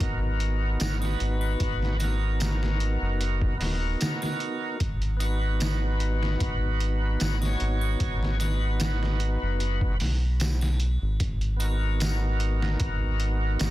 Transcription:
0.00 0.77 G#1 medium
0.00 0.95 B3 medium
0.00 0.96 D#4 medium
0.00 0.97 F#4 medium
0.00 0.99 A#4 medium
0.00 kick loud
0.00 closed hi-hat medium
0.40 closed hi-hat medium
0.80 1.16 G#1 loud
0.80 snare loud
0.80 closed hi-hat medium
0.80 tambourine medium
0.98 1.94 B3 medium
0.98 1.95 D#4 medium
0.98 triangle medium
1.03 1.97 F#4 medium
1.03 1.98 B4 medium
1.03 snare soft
1.20 1.56 G#1 medium
1.20 closed hi-hat medium
1.41 triangle medium
1.60 2.98 G#1 loud
1.60 kick loud
1.60 closed hi-hat medium
1.82 snare soft
1.96 3.54 B3 medium
1.96 3.55 D#4 medium
1.96 triangle medium
2.00 3.56 F#4 medium
2.00 3.58 A#4 medium
2.00 snare soft
2.00 closed hi-hat medium
2.40 snare loud
2.40 closed hi-hat medium
2.40 tambourine medium
2.63 snare medium
2.80 closed hi-hat medium
3.02 3.57 F#1 medium
3.21 closed hi-hat medium
3.42 kick medium
3.57 3.96 D#1 loud
3.57 4.76 B3 medium
3.57 4.78 D#4 medium
3.57 open hi-hat medium
3.62 4.79 F#4 medium
3.62 4.80 A#4 medium
3.62 snare soft
4.01 snare loud
4.01 closed hi-hat medium
4.01 tambourine medium
4.22 snare soft
4.22 triangle medium
4.40 closed hi-hat medium
4.80 6.37 G#1 loud
4.80 kick medium
4.80 closed hi-hat medium
5.02 closed hi-hat soft
5.17 7.35 B3 medium
5.17 7.36 D#4 medium
5.17 closed hi-hat medium
5.17 triangle medium
5.22 7.37 F#4 medium
5.22 7.39 B4 medium
5.60 snare loud
5.60 closed hi-hat medium
5.60 tambourine medium
6.00 closed hi-hat medium
6.23 snare medium
6.40 7.17 G#1 loud
6.40 kick loud
6.40 closed hi-hat medium
6.80 closed hi-hat medium
7.20 7.56 G#1 medium
7.20 snare loud
7.20 closed hi-hat medium
7.20 tambourine medium
7.38 8.34 B3 medium
7.38 8.36 D#4 medium
7.38 triangle medium
7.43 8.37 F#4 medium
7.43 8.38 C#5 medium
7.43 snare soft
7.60 7.96 G#1 loud
7.60 closed hi-hat medium
7.81 triangle medium
8.00 9.38 G#1 loud
8.00 kick loud
8.00 closed hi-hat medium
8.23 snare soft
8.37 9.94 B3 medium
8.37 9.95 D#4 medium
8.37 closed hi-hat medium
8.37 triangle medium
8.41 9.97 F#4 medium
8.41 9.98 B4 medium
8.41 snare soft
8.80 snare loud
8.80 closed hi-hat medium
8.80 tambourine medium
9.03 snare soft
9.20 closed hi-hat medium
9.42 10.03 F#1 medium
9.60 closed hi-hat medium
9.81 kick medium
10.00 10.98 B1 loud
10.00 snare soft
10.00 open hi-hat medium
10.40 snare loud
10.40 closed hi-hat medium
10.40 tambourine medium
10.61 snare soft
10.61 triangle medium
10.80 closed hi-hat medium
11.02 11.18 G#1 loud
11.20 12.77 G#1 loud
11.20 kick loud
11.20 closed hi-hat medium
11.41 closed hi-hat soft
11.57 13.71 B3 medium
11.57 13.71 D#4 medium
11.57 closed hi-hat medium
11.57 triangle medium
11.62 13.71 F#4 medium
11.62 13.71 A#4 medium
12.00 snare loud
12.00 closed hi-hat medium
12.00 tambourine medium
12.40 closed hi-hat medium
12.62 snare medium
12.80 13.57 G#1 loud
12.80 kick loud
12.80 closed hi-hat medium
13.20 closed hi-hat medium
13.59 13.71 G#1 loud
13.59 snare loud
13.59 closed hi-hat medium
13.59 tambourine medium

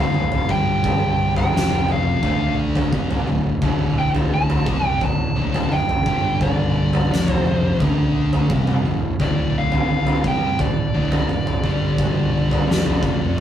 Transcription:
0.00 0.12 D1 medium
0.00 0.12 D2 medium
0.00 0.13 A2 loud
0.00 0.14 D3 medium
0.00 0.51 F5 medium
0.13 0.46 D1 medium
0.13 0.42 D2 medium
0.13 0.42 A2 medium
0.13 mid tom medium
0.32 floor tom medium
0.48 1.50 G1 medium
0.48 1.52 G2 medium
0.48 1.53 D3 medium
0.48 1.53 G3 loud
0.48 1.33 G5 loud
0.48 kick medium
0.84 kick loud
0.84 floor tom medium
1.36 1.91 G5 loud
1.36 floor tom medium
1.52 2.19 F1 loud
1.52 2.22 F2 medium
1.52 2.22 C3 medium
1.52 2.22 F3 loud
1.57 snare medium
1.72 floor tom medium
1.89 2.56 F5 medium
1.89 mid tom medium
2.23 2.89 D2 medium
2.23 2.92 D3 medium
2.23 2.92 A3 loud
2.23 2.92 D4 loud
2.23 kick loud
2.23 floor tom medium
2.75 floor tom medium
2.75 mid tom medium
2.92 3.25 C2 medium
2.92 3.26 C3 medium
2.92 3.27 G3 medium
2.92 3.27 C4 medium
2.92 kick loud
2.92 mid tom medium
3.11 floor tom medium
3.27 3.60 D1 medium
3.27 3.55 D2 medium
3.27 3.56 A2 medium
3.27 mid tom medium
3.62 4.63 D1 loud
3.62 4.66 D2 medium
3.62 4.66 A2 medium
3.62 4.66 D3 loud
3.62 kick loud
3.62 floor tom medium
3.99 4.08 G5 medium
4.15 floor tom medium
4.34 4.87 A5 loud
4.50 floor tom medium
4.66 4.99 C2 medium
4.66 5.01 C3 medium
4.66 5.01 G3 loud
4.66 5.02 C4 loud
4.66 kick loud
4.66 mid tom medium
4.87 5.04 G5 loud
5.01 5.34 D1 medium
5.01 5.30 D2 medium
5.01 5.30 A2 medium
5.01 5.75 A5 medium
5.01 kick medium
5.01 floor tom medium
5.35 5.68 D1 medium
5.35 5.70 D2 medium
5.35 5.70 A2 medium
5.35 5.71 D3 medium
5.54 floor tom medium
5.54 mid tom medium
5.69 6.03 D1 medium
5.69 5.99 D2 medium
5.69 5.99 A2 medium
5.69 6.38 G5 medium
5.69 mid tom medium
5.89 floor tom medium
6.05 7.07 G1 loud
6.05 7.09 G2 medium
6.05 7.10 D3 medium
6.05 7.10 G3 loud
6.05 kick medium
6.41 7.34 D5 medium
6.41 kick loud
6.41 floor tom medium
6.93 floor tom medium
7.10 7.76 F1 loud
7.10 7.79 F2 medium
7.10 7.79 C3 medium
7.10 7.79 F3 medium
7.10 snare medium
7.28 floor tom loud
7.34 7.77 C5 medium
7.46 mid tom medium
7.79 8.46 D2 loud
7.79 8.49 D3 medium
7.79 8.49 A3 loud
7.79 8.49 D4 loud
7.79 kick loud
7.79 floor tom medium
8.33 floor tom medium
8.33 mid tom medium
8.50 8.83 C2 medium
8.50 8.84 C3 medium
8.50 8.84 G3 medium
8.50 8.84 C4 medium
8.50 kick loud
8.50 mid tom medium
8.67 floor tom medium
8.85 9.18 D1 medium
8.85 9.13 D2 medium
8.85 9.13 A2 medium
8.85 mid tom medium
9.20 10.20 D1 loud
9.20 10.23 D2 medium
9.20 10.23 A2 medium
9.20 10.24 D3 loud
9.20 9.57 D5 loud
9.20 kick medium
9.20 floor tom medium
9.58 10.22 F5 loud
9.72 floor tom medium
10.07 floor tom medium
10.24 10.57 C2 medium
10.24 10.58 C3 medium
10.24 10.58 G3 loud
10.24 10.58 C4 loud
10.24 10.59 G5 medium
10.24 kick loud
10.24 mid tom medium
10.59 10.92 D1 medium
10.59 10.87 D2 medium
10.59 10.87 A2 medium
10.59 13.40 D5 medium
10.59 kick medium
10.59 floor tom medium
10.93 11.27 D1 medium
10.93 11.27 D2 medium
10.93 11.28 A2 loud
10.93 11.28 D3 loud
11.12 floor tom medium
11.12 mid tom medium
11.29 11.62 D1 medium
11.29 11.57 D2 medium
11.29 11.57 A2 medium
11.29 mid tom medium
11.47 floor tom medium
11.64 12.64 G1 medium
11.64 12.67 G2 medium
11.64 12.68 D3 loud
11.64 12.68 G3 loud
11.64 kick medium
11.98 kick loud
11.98 floor tom medium
12.51 floor tom medium
12.68 13.01 F1 medium
12.68 13.01 F2 medium
12.68 13.01 C3 medium
12.68 13.02 F3 medium
12.68 snare medium
12.86 floor tom medium
13.02 13.40 F1 medium
13.02 13.40 F2 medium
13.02 13.40 C3 loud
13.02 13.40 F3 loud
13.02 kick loud
13.02 mid tom medium

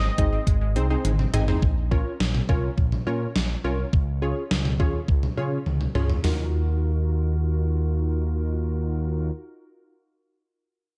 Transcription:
0.00 0.13 C4 medium
0.00 1.05 D#5 loud
0.18 0.38 G#1 medium
0.18 0.28 G#3 medium
0.18 0.39 C4 medium
0.18 0.39 D#4 medium
0.18 0.39 G#4 medium
0.18 0.39 D#5 loud
0.18 kick medium
0.18 closed hi-hat medium
0.33 0.42 C4 medium
0.47 0.77 G#1 loud
0.47 0.57 G#3 medium
0.47 kick medium
0.47 closed hi-hat medium
0.61 0.71 G#3 medium
0.76 0.96 C2 medium
0.76 0.86 C4 medium
0.76 0.86 D#4 medium
0.76 0.86 G#4 medium
0.76 0.86 C5 loud
0.76 closed hi-hat medium
0.90 1.12 C4 medium
0.90 1.00 D#4 medium
0.90 1.12 D#4 medium
0.90 1.12 G#4 medium
0.90 1.12 C5 medium
1.05 1.25 G#1 medium
1.05 1.14 G#3 medium
1.05 closed hi-hat medium
1.05 high tom medium
1.19 1.29 C4 medium
1.19 mid tom medium
1.34 1.54 G#1 medium
1.34 1.44 C4 loud
1.34 1.44 D#4 medium
1.34 1.44 G#4 medium
1.34 1.44 D#5 loud
1.34 1.43 G#5 medium
1.34 closed hi-hat medium
1.34 mid tom medium
1.48 1.62 C4 medium
1.48 1.62 D#4 medium
1.48 1.58 D#4 medium
1.48 1.62 G#4 medium
1.48 1.62 C5 medium
1.48 floor tom loud
1.62 2.03 A#1 loud
1.62 kick loud
1.91 2.12 C#4 medium
1.91 2.12 F4 medium
1.91 2.12 A#4 medium
1.91 2.12 C#5 loud
1.91 kick medium
2.20 2.40 A#1 loud
2.20 snare loud
2.35 mid tom loud
2.49 2.69 C2 medium
2.49 2.70 C#4 medium
2.49 2.70 F4 medium
2.49 2.70 A#4 medium
2.49 2.70 C#5 loud
2.49 kick medium
2.78 2.98 A#1 loud
2.78 kick medium
2.92 mid tom medium
3.07 3.27 A#2 loud
3.07 3.28 C#4 medium
3.07 3.28 F4 medium
3.07 3.28 A#4 medium
3.07 3.28 C#5 loud
3.35 3.56 A#1 medium
3.35 snare loud
3.64 3.85 C2 medium
3.64 3.86 C#4 medium
3.64 3.86 F4 medium
3.64 3.86 A#4 medium
3.64 3.86 C#5 loud
3.93 4.34 C#2 loud
3.93 kick loud
4.22 4.43 C#4 medium
4.22 4.43 F4 medium
4.22 4.43 G#4 medium
4.22 4.43 C#5 medium
4.51 4.81 C#2 loud
4.51 snare loud
4.65 mid tom medium
4.80 5.00 D#2 medium
4.80 5.01 C#4 medium
4.80 5.01 F4 medium
4.80 5.01 G#4 medium
4.80 5.01 C#5 loud
4.80 kick medium
5.08 5.29 C#2 loud
5.08 kick medium
5.23 mid tom medium
5.37 5.58 C#3 medium
5.37 5.59 C#4 medium
5.37 5.59 F4 medium
5.37 5.59 G#4 medium
5.37 5.59 C#5 loud
5.66 5.86 C#2 medium
5.66 high tom soft
5.81 mid tom medium
5.95 6.15 C#2 medium
5.95 6.16 C#4 medium
5.95 6.16 F4 medium
5.95 6.16 G#4 medium
5.95 6.16 C#5 loud
5.95 mid tom medium
6.10 floor tom medium
6.24 9.31 D#2 medium
6.24 9.31 D#4 medium
6.24 9.31 F4 medium
6.24 9.31 F#4 medium
6.24 9.31 A#4 medium
6.24 snare loud
6.24 floor tom medium
6.24 open hi-hat medium

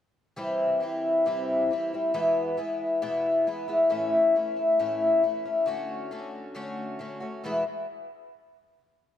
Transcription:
0.36 0.81 C3 medium
0.36 0.80 E3 medium
0.36 0.80 G3 medium
0.36 0.81 C4 medium
0.36 0.83 E4 medium
0.80 1.25 E3 medium
0.80 1.25 G3 medium
0.80 1.26 C4 medium
0.80 1.27 E4 medium
1.26 1.70 C3 medium
1.26 1.70 E3 medium
1.26 1.70 G3 medium
1.26 1.70 C4 medium
1.26 1.73 E4 medium
1.71 1.92 E3 medium
1.71 1.93 G3 medium
1.71 1.93 C4 medium
1.71 1.92 E4 medium
1.93 2.14 G3 soft
1.93 2.14 C4 soft
1.93 2.13 E4 soft
2.14 2.58 E2 medium
2.14 2.58 B2 medium
2.14 2.57 E3 medium
2.14 2.57 G#3 medium
2.14 2.57 B3 medium
2.14 2.59 E4 medium
2.57 3.02 E3 medium
2.57 3.01 G#3 medium
2.57 3.01 B3 medium
2.57 3.03 E4 medium
3.02 3.46 E2 medium
3.02 3.47 B2 medium
3.02 3.46 E3 medium
3.02 3.46 G#3 medium
3.02 3.46 B3 medium
3.02 3.47 E4 medium
3.47 3.69 E3 medium
3.47 3.68 G#3 medium
3.47 3.68 B3 medium
3.47 3.67 E4 medium
3.68 3.88 E3 soft
3.68 3.90 G#3 soft
3.68 3.90 B3 medium
3.68 3.91 E4 medium
3.89 4.35 A2 medium
3.89 4.34 E3 medium
3.89 4.35 A3 medium
3.89 4.36 C#4 medium
3.89 4.36 E4 loud
4.35 4.58 E3 medium
4.35 4.58 A3 medium
4.35 4.57 C#4 medium
4.35 4.55 E4 medium
4.56 4.79 A3 soft
4.56 4.78 C#4 soft
4.56 4.79 E4 medium
4.79 5.24 A2 medium
4.79 5.22 E3 medium
4.79 5.23 A3 medium
4.79 5.23 C#4 medium
4.79 5.23 E4 medium
5.23 5.46 E3 medium
5.23 5.46 A3 medium
5.23 5.44 C#4 medium
5.23 5.44 E4 medium
5.45 5.66 A3 soft
5.45 5.67 C#4 medium
5.45 5.67 E4 soft
5.66 6.10 D3 medium
5.66 6.11 A3 medium
5.66 6.11 C#4 loud
5.66 6.11 F#4 medium
6.11 6.53 D3 medium
6.11 6.54 A3 medium
6.11 6.55 C#4 medium
6.11 6.55 F#4 medium
6.55 6.98 D3 medium
6.55 6.99 A3 medium
6.55 6.99 C#4 medium
6.55 7.00 F#4 loud
6.99 7.22 D3 medium
6.99 7.21 A3 medium
6.99 7.21 C#4 medium
6.99 7.19 F#4 medium
7.20 7.45 A3 soft
7.20 7.45 C#4 medium
7.20 7.44 F#4 medium
7.44 7.62 E2 medium
7.44 7.62 B2 medium
7.44 7.63 E3 medium
7.44 7.63 G#3 medium
7.44 7.63 B3 medium
7.44 7.63 E4 loud

